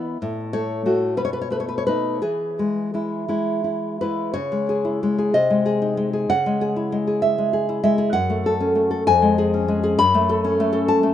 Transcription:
Already playing: E3 B3 E4 D#5
0.22 A2
0.53 A3 C#5
0.86 A3 F#4
1.17 B2 B4
1.25 C#5
1.33 B4
1.41 C#5
1.50 A3 B4
1.60 C#5
1.69 B4
1.78 C#5
1.87 A3 D#4 B4
2.22 E3 G#4
2.59 G#3
2.94 G#3 E4
3.28 G#3 E4
3.64 E4
4.01 G#3 E4 B4
4.34 C#3 C#5
4.52 G#3
4.69 G#4
4.85 E4
5.03 G#3
5.18 G#4
5.34 C3 D#5
5.50 G#3
5.66 G#4
5.82 D#4
5.97 G#3
6.13 G#4
6.30 C#3 F#5
6.46 G#3
6.61 G#4
6.76 E4
6.92 G#3
7.07 G#4
7.22 E5
7.38 G#3
7.53 G#4
7.69 E4
7.83 G#3 E5
7.98 G#4
8.13 F#2 F#5
8.30 A3
8.46 A4
8.60 C#4
8.75 A3
8.91 A4
9.07 F2 G#5
9.22 G#3
9.38 G#4
9.54 C#4
9.68 G#3
9.83 G#4
9.99 F#2 B5
10.14 A3
10.29 A4
10.44 C#4
10.60 A3
10.73 A4
10.88 A5
11.03 A3

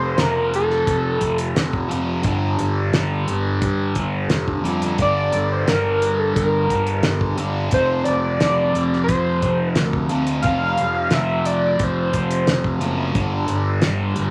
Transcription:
Already playing: F1 F2 C3 F3 C5
0.18 F1 A#4, snare, closed hi-hat
0.54 A4, closed hi-hat
0.70 snare
0.87 F1, kick, closed hi-hat
1.21 F1, kick, closed hi-hat
1.38 closed hi-hat
1.56 F1, snare, closed hi-hat
1.73 kick
1.89 F1 F2 C3 F3, closed hi-hat
2.23 G1 G2 D3 G3, kick, closed hi-hat
2.59 G1, closed hi-hat
2.93 G1, snare, closed hi-hat
3.28 G1, closed hi-hat
3.62 G2, kick, closed hi-hat
3.95 G1, kick, closed hi-hat
4.30 F1, snare, closed hi-hat
4.48 kick
4.63 F2 G2 D3 G3, closed hi-hat
4.82 closed hi-hat
4.98 G1 G2 D3 G3 D5, kick, closed hi-hat
5.32 G1, closed hi-hat
5.52 C5
5.68 G1 A#4, snare, closed hi-hat
6.02 closed hi-hat
6.19 A4
6.36 G1 A#4, kick, closed hi-hat
6.70 G1, kick, closed hi-hat
6.87 closed hi-hat
7.03 G1, snare, closed hi-hat
7.21 kick
7.38 G1 G2 D3 G3, closed hi-hat
7.71 F1 F2 C3 F3 C5, kick, closed hi-hat
8.04 F1 D5, closed hi-hat
8.40 F1, snare, closed hi-hat
8.75 F1, closed hi-hat
8.93 snare
9.04 C5
9.08 F2, kick, closed hi-hat
9.42 F1, kick, closed hi-hat
9.74 A#4, snare, closed hi-hat
9.78 D2
9.93 kick
10.09 D2 F2 C3 F3, closed hi-hat
10.27 closed hi-hat
10.42 F1 F2 C3 F5, kick, closed hi-hat
10.46 F3
10.78 F1, closed hi-hat
11.11 F1 E5, snare, closed hi-hat
11.45 D5, closed hi-hat
11.79 F1, kick, closed hi-hat
11.84 C5
12.13 F1, kick, closed hi-hat
12.31 closed hi-hat
12.47 F1, snare, closed hi-hat
12.64 kick
12.80 F#1 F2 C3 F3, closed hi-hat
13.14 G1 G2 D3 G3, kick, closed hi-hat
13.48 G1, closed hi-hat
13.82 G1, snare, closed hi-hat
14.16 G1, closed hi-hat

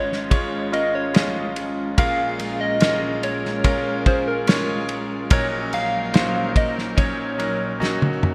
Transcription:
Already playing: G#1 G#2 G#3 C#4 F4 B4 C5 C#5 D#5
0.12 snare
0.30 G#3 C#4 F4 C#5, kick, ride
0.72 G#3 C#4 F4 A#4 D#5, ride
0.95 C#5
1.14 G#3 C#4 F4 D#5, snare, ride
1.56 ride
1.97 A#1 A#2 G#3 C#4 F4 A#4 F5, kick, ride
2.39 G#3 C#4 F4, ride
2.61 D#5
2.80 G#3 C#4 F4 A#4, snare, ride
3.23 C#5, ride
3.45 snare
3.64 G#3 C#4 F4 A#4, kick, ride
4.06 G#3 C#4 F4 G#4 C5, kick, ride
4.28 A#4
4.47 G#3 C#4 F4 C#5, snare, ride
4.89 ride
5.30 A#1 A#2 F#3 C#4 D#4 A#4 C#5, kick, ride
5.73 A#3 C#4 F#4 F5, ride
6.13 F#3 A#3 C#4 D#4 C5, snare, ride
6.56 D#5, kick, ride
6.78 snare
6.96 F#3 C#4 D#4 C#5, kick, ride
7.38 F#3 C#4 D#4 A#4, ride
7.80 F#3 A#3 C#4 D#4 F#4, snare
8.02 high tom
8.23 mid tom

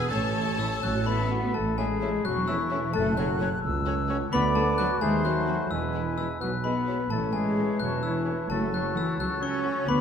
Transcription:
0.09 A1 A2 C#4 A4 C#5 A5 E6
0.35 C#4 E4
0.57 E3 C#4 E4 E6
0.82 A1 A2 F#3 C#4 F#4 F#6
1.06 B3 C#4 E4 B4 B5
1.30 C#4 E4 F#4
1.54 A1 A3 A4 A5
1.77 G#3 A3 C#4 E4 G#4 E5 G#5
2.02 A3 C#4 E4 E5
2.23 E1 F#3 F#4 C#6 F#6
2.47 E3 A3 C#4 E4 E5 E6
2.70 A3 C#4 E4 E5
2.92 F#1 A3 A4 A5 F#6
3.16 F#3 A3 C#4 F#4 C#5 F#6
3.40 A3 C#4 F#4 C#5
3.64 C#2 E6
3.86 A3 C#4 F#4 C#5
4.08 A3 C#4 F#4 C#5
4.32 D2 B3 B4 D5 B5 D6
4.55 F#3 A3 B3 F#4 A4 A5
4.78 F#3 B3 F#4 F#6
5.00 D#2 G#3 A3 G#4 C5 G#5 C6
5.23 F#3 A3 C4 F#4 F#6
5.47 A3 C4 F#4
5.70 E1 E2 E3 G#3 E4 B4 G#5 E6
5.94 G#3 B3 E4
6.17 E3 G#3 B3 E4 E6
6.40 B1 F#3 B3 F#4 B4 F#6
6.64 G#3 B3 E4 B4 B5
6.87 F#3 G#3 B3 E4
7.10 A1 E3 A3 A4 C#5 A5
7.33 G#3 G#4 G#5
7.58 A3 C#4 E4
7.80 E1 F#3 F#4 A5 F#6
8.03 E3 E4 E6
8.26 A3 C#4 E4
8.50 F#1 F#3 A3 A4 A5 C#6
8.72 F#3 F#4 F#6
8.96 E3 A3 C#4 E4 F#4 E6
9.19 C#2 F#3 F#4 C#6 F#6
9.41 C#4 C#5 C#6
9.64 A3 C#4 F#4
9.86 D2 B3 B4 B5 D6

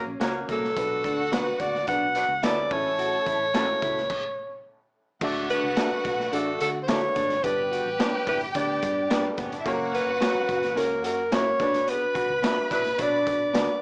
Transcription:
Already playing: C#4
0.07 A#1
0.20 C#2 A#3 C#4 F#4 A#4 C#5, snare, closed hi-hat
0.49 C2 A#3 A4, kick, snare, closed hi-hat
0.64 snare
0.76 B1 B2 B3 D4 F#4 B4 F#5, kick, closed hi-hat
1.04 D2 D4, kick, closed hi-hat
1.32 F#3 B3 D4 F#4 B4, snare, closed hi-hat
1.60 D2 F#4 D5, kick, closed hi-hat
1.75 snare
1.87 B1 F#3 B3 D4 F#4 B4 F#5, kick, closed hi-hat
2.15 F#3 D4 F#4 B4, closed hi-hat
2.28 C#2
2.43 D2 E3 B3 C#4 D4 E4 F#4 A4 B4 D5, snare, closed hi-hat
2.71 A1 A2 A3 C#4 E4 A4 C#5 A5, kick, open hi-hat
2.99 F#4, closed hi-hat
3.26 A1 E4, kick, closed hi-hat
3.54 E3 A3 C#4 E4 F#4 A4, snare, closed hi-hat
3.82 C#2 E4, kick, closed hi-hat
3.97 snare
4.10 kick, crash
5.21 D2 D3 A3 D4 F#4 A4 D5 F#5, kick, crash
5.49 D4 B4, closed hi-hat
5.63 C#2
5.76 A3 D4 F#4 A4 E5, snare, closed hi-hat
5.91 muted fingered electric bass stroke
6.04 B1 F#4, kick, closed hi-hat
6.20 snare
6.32 A1 A3 D4 F#4 A4 D5, closed hi-hat
6.60 D3 F#4 A4, closed hi-hat
6.83 C5
6.88 A3 D4 E4 F#4 A4 B4 C#5, snare, closed hi-hat
7.16 G#1 D4, kick, snare, closed hi-hat
7.30 snare, closed hi-hat
7.44 G1 G2 B3 D4 G4 B4 D5 G5, kick, closed hi-hat
7.71 F#4, closed hi-hat
7.86 A1
7.99 B3 D4 G4 B4 C#5, snare, closed hi-hat
8.13 muted fingered electric bass stroke
8.27 G1 E4 B4, kick, closed hi-hat
8.41 closed hi-hat
8.54 D2 B3 D4 G4 B4 D5, kick, closed hi-hat
8.82 G2, kick, closed hi-hat
9.10 B3 D4 G4 B4 D5, snare, closed hi-hat
9.24 G3 G4
9.31 A3 A4
9.37 G1 B3 B4, kick, snare, closed hi-hat
9.45 C#4 C#5
9.52 D4 D5, closed hi-hat
9.60 E4 E5
9.66 F#1 A#3 C#4 F#4 G4 C#5 F#5, kick, closed hi-hat
9.73 A#4
9.93 C#4 B4, closed hi-hat
10.06 G1
10.20 F#3 A#3 C#4 F#4 A#4 C#5 A#5, snare, closed hi-hat
10.35 muted fingered electric bass stroke
10.49 F#1 F#4, kick, closed hi-hat
10.63 snare, closed hi-hat
10.76 C#2 A#3 C#4 F#4 A#4 C#5, closed hi-hat
11.04 F#2 F#4 A#4, closed hi-hat
11.31 A#3 C#4 E4 F#4 A#4 C#5, snare, closed hi-hat
11.59 B1 B2 B3 D4 F#4 B4 D5 B5, kick, snare, closed hi-hat
11.74 snare, closed hi-hat
11.87 B3 B4, closed hi-hat
12.14 F#4, kick, closed hi-hat
12.30 C#2
12.42 B3 D4 F#4 B4 E5, snare, closed hi-hat
12.58 muted fingered electric bass stroke
12.71 B1 F#3 D4 E4 B4, kick, closed hi-hat
12.85 snare, closed hi-hat
12.98 B2 F#3 B3 D4 F#4 B4 C#5 D5, kick, closed hi-hat
13.06 D5
13.27 B1, kick, closed hi-hat
13.53 D2 B3 D4 F#4 B4 D5, snare, closed hi-hat

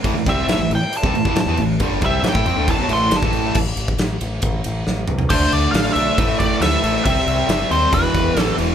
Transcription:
0.04 A1 A2 E3, kick, crash
0.14 A1 A2 E3
0.26 C2 C3 G3 C4 E5, kick, snare, crash
0.47 A1 A2 E3, snare, crash
0.59 A1 A2 E3
0.70 A1 A2 E3, crash
0.75 G5
0.81 muted overdriven electric guitar stroke, muted distorted electric guitar stroke
0.92 crash
0.97 A5
1.03 C2 C3 G3, kick
1.13 A1 A2 E3, crash
1.25 A1 A2 E3, kick
1.35 A1 A2 E3, snare, crash
1.41 A5
1.46 E2 E3 B3
1.57 A1 A2 E3, crash
1.80 G1 G2 D3 G3, kick, crash
2.01 C2 C3 G3 C4 E5, kick, crash
2.23 A1 A2 E3, snare, crash
2.28 G5
2.35 A2 A3 E4, kick
2.46 F2 F3 C4, crash
2.57 D2 D3 A3
2.68 A1 A2 E3 A5, kick, crash
2.79 B1 B2 F#3
2.89 A1 A2 E3 A3 C6, crash
3.11 G1 G2 D3, snare, crash
3.17 A5
3.22 A1 A2 E3 A3, kick
3.33 crash
3.55 A1, kick, crash
3.77 A1, ride
3.88 kick
3.98 A1, snare, ride
4.21 A1, ride
4.42 A1, kick, ride
4.64 A1, ride
4.87 A1, snare
5.08 C2, mid tom
5.19 floor tom
5.30 D2 D3 A3 D4 C5, kick, crash
5.52 D2 D5, crash
5.72 A1 D3 A3 D4 F5, snare, crash
5.93 B1 D3 A3 E5, crash
5.97 D4
6.18 A1 A2 E3 A3, kick, crash
6.39 A1 D5, kick, crash
6.61 D2 A2 E3 A3 E5, snare, crash
6.83 A1 A2 E3 A3, crash
7.05 C2 C3 G3 C4 E5, kick, crash
7.27 C2, crash
7.49 G1 C3 G3 C4, snare, crash
7.71 D#2 C3 G3 C4 C5, crash
7.93 E1 E2 B2 E3 B4, kick, crash
8.14 E1, kick, crash
8.36 A1 E2 B2 E3, snare, crash
8.40 A4
8.57 E1 E2 B2 E3, crash

